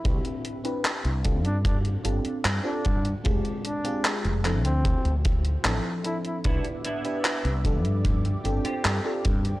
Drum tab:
HH |xxxxxxxxxxxxx-xx|xxxxxxxxxxxxx-xx|xxxxxxxxxxxxx-xx|
CP |----x-------x---|----x-x-----x---|----x-------x---|
BD |o-----o-o-----o-|o-------o-o-----|o-----o-o-----o-|